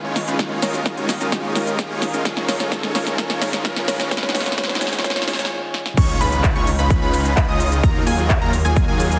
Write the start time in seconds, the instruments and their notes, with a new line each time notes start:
Already playing: grand piano D#3 G#3 C#4 F4, analog synth pad G#4 D#5 F5 C#6, riser
0.04 detuned saw bass C#2, supersaw synth G#3 C#4 D#4 F4 C#5
0.16 snare, open hi-hat, shaker
0.28 detuned saw bass C#2, supersaw synth G#3 C#4 D#4 F4 B4, closed hi-hat, shaker
0.38 detuned saw bass D#2, grand piano D#3 G#3 C#4 F4, supersaw synth G#3 C#4 D#4 F4 C#5, analog synth pad A#4 D#6, kick, snare, closed hi-hat, shaker
0.62 detuned saw bass D#2, supersaw synth G#3 C#4 D#4 F4 A#4, fm electric piano C#5, snare, open hi-hat, shaker
0.74 fm electric piano C#5, closed hi-hat, shaker
0.86 kick, snare, closed hi-hat, shaker
0.97 detuned saw bass D#2, supersaw synth G#3 C#4 D#4 F4 C#5, closed hi-hat
1.09 snare, open hi-hat, shaker
1.21 detuned saw bass D#2, supersaw synth G#3 C#4 D#4 F4 A#4, closed hi-hat, shaker
1.31 detuned saw bass D#2, grand piano D#3 G#3 C#4 F4, supersaw synth G#3 C#4 D#4 F4 C#5, kick, snare, closed hi-hat, shaker
1.55 detuned saw bass D#2, supersaw synth G#3 C#4 D#4 F4 A#4, fm electric piano C#5, snare, open hi-hat, shaker
1.67 fm electric piano C#5, closed hi-hat, shaker
1.79 kick, snare, closed hi-hat, shaker
1.90 detuned saw bass D#2, supersaw synth G#3 C#4 D#4 F4 C#5
2.02 snare, open hi-hat, shaker
2.14 detuned saw bass A#1, supersaw synth G#3 C#4 D#4 F4 A#4, closed hi-hat, shaker
2.24 detuned saw bass A#1, grand piano D#3 G#3 C#4 F4, supersaw synth G#3 C#4 D#4 F4 C#5, analog synth pad G#5 C#6, kick, snare, closed hi-hat, shaker
2.37 snare
2.48 detuned saw bass A#1, supersaw synth G#3 C#4 D#4 F4 A#4, fm electric piano C#5, snare, open hi-hat, shaker
2.60 fm electric piano C#5, snare, closed hi-hat, shaker
2.71 detuned saw bass A#1, grand piano D#3 G#3 C#4 F4, supersaw synth G#3 C#4 D#4 F4 C#5, kick, snare, closed hi-hat, shaker
2.83 snare, closed hi-hat
2.95 detuned saw bass A#1, supersaw synth G#3 C#4 D#4 F4 A#4, fm electric piano C#5, snare, open hi-hat, shaker
3.07 fm electric piano C#5, snare, closed hi-hat, shaker
3.17 detuned saw bass A#1, grand piano D#3 G#3 C#4 F4, supersaw synth G#3 C#4 D#4 F4 C#5, kick, snare, closed hi-hat, shaker
3.30 snare
3.41 detuned saw bass A#1, supersaw synth G#3 C#4 D#4 F4 A#4, fm electric piano C#5, snare, open hi-hat, shaker
3.53 fm electric piano C#5, snare, closed hi-hat, shaker
3.64 detuned saw bass A#1, grand piano D#3 G#3 C#4 F4, supersaw synth G#3 C#4 D#4 F4 C#5, kick, snare, closed hi-hat, shaker
3.76 snare
3.88 detuned saw bass A#1, supersaw synth G#3 C#4 D#4 F4 A#4, fm electric piano C#5, snare, open hi-hat, shaker
4.00 fm electric piano C#5, snare, closed hi-hat, shaker
4.10 detuned saw bass F#1, grand piano D#3 G#3 C#4 F4, supersaw synth G#3 C#4 D#4 F4 C#5, analog synth pad C#5 F#5, fm electric piano C#5, kick, snare, closed hi-hat, shaker
4.17 snare
4.23 fm electric piano C#5, snare
4.29 snare
4.33 detuned saw bass F#1, grand piano D#3 G#3 C#4 F4, supersaw synth G#3 C#4 D#4 F4 C#5, fm electric piano C#5, snare, open hi-hat, shaker
4.40 snare
4.46 fm electric piano C#5, snare, closed hi-hat, shaker
4.52 snare
4.57 detuned saw bass F#1, grand piano D#3 G#3 C#4 F4, supersaw synth G#3 C#4 D#4 F4 C#5, fm electric piano C#5, kick, snare, closed hi-hat, shaker
4.64 snare
4.69 fm electric piano C#5, snare, closed hi-hat
4.75 snare
4.80 detuned saw bass F#1, grand piano D#3 G#3 C#4 F4, supersaw synth G#3 C#4 D#4 F4 C#5, fm electric piano C#5, snare, open hi-hat, shaker
4.87 snare
4.93 fm electric piano C#5, snare, closed hi-hat, shaker
4.99 snare
5.03 grand piano D#3 G#3 C#4 F4, supersaw synth G#3 C#4 D#4 F4 C#5, fm electric piano C#5, kick, snare, closed hi-hat, shaker
5.10 snare
5.16 fm electric piano C#5, snare
5.22 snare
5.26 detuned saw bass F#1, grand piano D#3 G#3 C#4 F4, supersaw synth G#3 C#4 D#4 F4 C#5, fm electric piano C#5, snare, open hi-hat, shaker
5.33 snare
5.39 fm electric piano C#5, snare, closed hi-hat, shaker
5.45 snare
5.74 snare
5.86 snare
5.97 detuned saw bass C#2, analog synth pad C#3 C#4 D#4 F4, supersaw synth G#3 C#4 D#4 F4 C#5, digital synth lead C#6, kick, closed hi-hat, crash, impact, shaker
6.21 detuned saw bass C#2, supersaw synth G#3 C#4 D#4 F4 B4, digital synth lead B5, open hi-hat, ride, shaker
6.32 closed hi-hat, shaker
6.44 kick, clap, closed hi-hat, shaker
6.56 detuned saw bass C#2, supersaw synth G#3 C#4 D#4 F4 C#5, digital synth lead C#6, closed hi-hat
6.67 open hi-hat, ride, shaker
6.79 detuned saw bass C#2, supersaw synth G#3 C#4 D#4 F4 B4, digital synth lead B5, closed hi-hat, shaker
6.90 kick, closed hi-hat, shaker
7.02 detuned saw bass C#2, supersaw synth G#3 C#4 D#4 F4 B4, digital synth lead B5
7.14 open hi-hat, ride, shaker
7.25 closed hi-hat, shaker
7.37 detuned saw bass C#2, supersaw synth G#3 C#4 D#4 F4 B4, digital synth lead B5, kick, clap, closed hi-hat, shaker
7.48 detuned saw bass C#2, supersaw synth G#3 C#4 D#4 F4 D#5, digital synth lead D#6
7.60 open hi-hat, ride, shaker
7.72 closed hi-hat, shaker
7.83 detuned saw bass D#2, analog synth pad D#3 F#3 A#3, supersaw synth F#3 A#3 D#4 F4 A#4, digital synth lead A#5, kick, closed hi-hat, shaker
8.07 detuned saw bass D#2, supersaw synth F#3 A#3 D#4 F4 G#4, digital synth lead G#5, open hi-hat, ride, shaker
8.18 closed hi-hat, shaker
8.30 kick, clap, closed hi-hat, shaker
8.42 detuned saw bass D#2, supersaw synth F#3 A#3 D#4 F4 A#4, digital synth lead A#5, closed hi-hat
8.53 open hi-hat, ride, shaker
8.65 detuned saw bass D#2, supersaw synth F#3 A#3 D#4 F4 G#4, digital synth lead G#5, closed hi-hat, shaker
8.76 kick, closed hi-hat, shaker
8.88 detuned saw bass D#2, supersaw synth F#3 A#3 D#4 F4 G#4, digital synth lead G#5
9.00 open hi-hat, ride, shaker
9.11 closed hi-hat, shaker